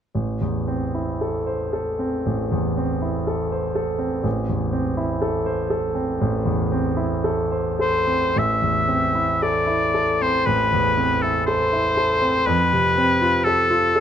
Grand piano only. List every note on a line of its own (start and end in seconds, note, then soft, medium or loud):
0.15 2.22 A1 soft
0.41 0.84 E2 soft
0.68 1.10 C4 soft
0.95 1.37 E4 soft
1.21 1.63 A4 soft
1.47 1.89 C5 soft
1.73 2.15 A4 soft
1.99 2.41 C4 soft
2.26 4.21 A1 soft
2.52 2.92 E2 soft
2.77 3.17 C4 soft
3.02 3.42 E4 soft
3.27 3.67 A4 soft
3.52 3.91 C5 soft
3.75 4.15 A4 soft
3.99 4.39 C4 soft
4.23 6.16 A1 soft
4.49 4.89 E2 soft
4.72 5.12 C4 soft
4.97 5.37 E4 soft
5.22 5.61 A4 soft
5.46 5.86 C5 soft
5.70 6.10 A4 soft
5.95 6.35 C4 soft
6.21 8.32 A1 soft
6.46 6.87 E2 soft
6.72 7.14 C4 soft
6.97 7.40 E4 soft
7.24 7.69 A4 soft
7.51 7.98 C5 soft
7.79 8.25 A4 soft
8.07 8.35 C4 soft
8.36 10.43 A1 soft
8.62 9.05 E2 soft
8.88 9.31 C4 soft
9.15 9.58 E4 soft
9.42 9.84 A4 soft
9.67 10.10 E4 soft
9.94 10.36 A4 soft
10.22 10.63 C4 soft
10.46 12.43 A1 soft
10.72 11.13 E2 soft
10.97 11.38 C4 soft
11.24 11.63 E4 soft
11.48 11.88 A4 soft
11.73 12.13 E4 soft
11.97 12.37 A4 soft
12.22 12.47 C4 soft
12.47 14.00 F2 soft
12.73 13.12 C3 soft
12.98 13.36 C4 soft
13.22 13.60 F4 soft
13.46 13.85 A4 soft
13.71 14.00 F4 soft
13.96 14.00 A4 soft